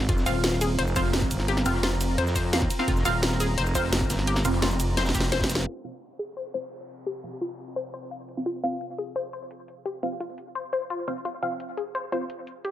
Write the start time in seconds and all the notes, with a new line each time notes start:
Already playing: C4 F4
0.00 snare
0.09 F1 F4 A#5, kick, closed hi-hat
0.18 snare, cabasa
0.26 D#1 C4 F4 F5, snare, closed hi-hat, ride, cabasa
0.44 snare, closed hi-hat
0.52 snare
0.61 G#4, snare, closed hi-hat, ride, cabasa
0.79 F1 C5, closed hi-hat
0.87 cabasa
0.96 F1 C4 F4 C5 F5, kick, closed hi-hat, ride, cabasa
1.05 closed hi-hat
1.13 snare, closed hi-hat
1.22 kick
1.31 G1, closed hi-hat, ride, cabasa
1.40 snare
1.48 G4, closed hi-hat
1.57 snare, cabasa
1.65 F1 C4 F4 F5, snare, closed hi-hat, ride, cabasa
1.75 snare
1.83 F4, snare, closed hi-hat
1.92 closed hi-hat
2.01 closed hi-hat, ride, cabasa
2.18 F2 C5, snare, closed hi-hat
2.27 snare, cabasa
2.36 C5, kick, snare, closed hi-hat, ride, cabasa
2.53 F5, snare, closed hi-hat
2.62 kick, snare
2.70 closed hi-hat, ride, cabasa
2.79 C4 F4 F5, snare
2.88 F1 F4, kick, closed hi-hat
2.97 snare, cabasa
3.05 D#1 C4 F4 F5, snare, closed hi-hat, ride, cabasa
3.22 snare, closed hi-hat
3.32 snare
3.40 G#4, snare, closed hi-hat, ride, cabasa
3.58 F1 C5, closed hi-hat
3.66 cabasa
3.75 F1 C4 F4 C5 F5, kick, closed hi-hat, ride, cabasa
3.85 closed hi-hat
3.92 snare, closed hi-hat
4.01 kick
4.10 G1, snare, closed hi-hat, ride, cabasa
4.19 snare, closed hi-hat
4.27 G4, closed hi-hat
4.36 snare, closed hi-hat, cabasa
4.45 F1 C4 F4 F5, closed hi-hat, ride, cabasa
4.54 closed hi-hat
4.62 F4, snare, closed hi-hat
4.71 closed hi-hat, cabasa
4.80 closed hi-hat, ride, cabasa
4.97 F1 C5, snare, closed hi-hat
5.05 snare, closed hi-hat, cabasa
5.09 snare
5.14 F1 G4, kick, snare, closed hi-hat, ride, cabasa
5.20 snare
5.32 C5, snare, closed hi-hat
5.40 kick, snare, closed hi-hat
5.44 snare
5.49 snare, closed hi-hat, ride, cabasa
5.55 snare, closed hi-hat
5.59 snare
5.67 C4 F4 F5, downlifter
5.84 C4 F4 F5
6.02 closed hi-hat
6.19 G#4
6.37 C5
6.54 C4 F4 C5
6.72 closed hi-hat
6.89 closed hi-hat
7.06 G4, closed hi-hat
7.24 C4 F4 F5, closed hi-hat
7.41 F4, closed hi-hat
7.59 closed hi-hat
7.76 C5, closed hi-hat
7.94 C5, closed hi-hat
8.11 F5, closed hi-hat
8.29 closed hi-hat, cabasa
8.37 C4 F4 F5
8.46 F4, closed hi-hat
8.63 C4 F4 F5, closed hi-hat, cabasa
8.81 closed hi-hat
8.90 cabasa
8.98 G#4, closed hi-hat, cabasa
9.16 C5, closed hi-hat
9.33 C5, closed hi-hat, cabasa
9.51 closed hi-hat
9.68 closed hi-hat, cabasa
9.86 G4, closed hi-hat
10.03 C4 F4 F5, closed hi-hat, cabasa
10.20 F4, closed hi-hat
10.29 cabasa
10.38 closed hi-hat, cabasa
10.55 C5, closed hi-hat
10.73 C5, closed hi-hat, cabasa
10.90 F4, closed hi-hat
11.08 C4 F4 C5 F5, closed hi-hat, cabasa
11.25 F4, closed hi-hat
11.43 C4 F4 F5, closed hi-hat, cabasa
11.60 closed hi-hat
11.69 cabasa
11.77 G#4, closed hi-hat, cabasa
11.95 C5, closed hi-hat
12.12 C4 F4 C5 F5, closed hi-hat, cabasa
12.30 closed hi-hat
12.47 closed hi-hat, cabasa
12.65 G4, closed hi-hat